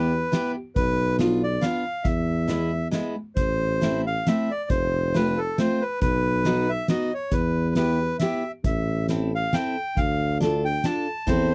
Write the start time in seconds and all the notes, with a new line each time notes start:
Already playing: E2 B3 E4 G4 B4
0.32 B3 E4 G4, snare, closed hi-hat
0.76 B1 B4, kick, closed hi-hat
1.19 B3 D4 F4, snare, closed hi-hat
1.44 D5
1.61 B3 D4 F4 F5, snare, closed hi-hat
2.04 E2 E5, kick, closed hi-hat
2.48 G#3 B3 E4, snare, closed hi-hat
2.91 G#3 B3 E4, snare, closed hi-hat
3.36 A1 C5, kick, closed hi-hat
3.81 A3 C4 E4, snare, closed hi-hat
4.07 F5
4.26 A3 C4 E4 E5, snare, closed hi-hat
4.51 D5
4.70 F1 C5, kick, closed hi-hat
5.14 A3 C4 F4 B4, snare, closed hi-hat
5.38 A4
5.58 A3 C4 F4 C5, snare, closed hi-hat
5.81 B4
6.01 B1 B4, kick, closed hi-hat
6.45 B3 D#4 F#4, snare, closed hi-hat
6.69 E5
6.88 B3 D#4 F#4 D#5, snare, closed hi-hat
7.14 C#5
7.31 E2 B4, kick, closed hi-hat
7.75 B3 E4 G4 B4, snare, closed hi-hat
8.19 B3 E4 G4 E5, snare, closed hi-hat
8.64 A1 E5, kick, closed hi-hat
9.08 C4 E4 A4, snare, closed hi-hat
9.35 F5
9.53 C4 E4 A4 G5, snare, closed hi-hat
9.97 D2 F5, kick, closed hi-hat
10.40 D4 F4 A4, snare, closed hi-hat
10.65 G5
10.84 D4 F4 A4 A5, snare, closed hi-hat
11.27 E2 C4 E4 A4 C5, kick, closed hi-hat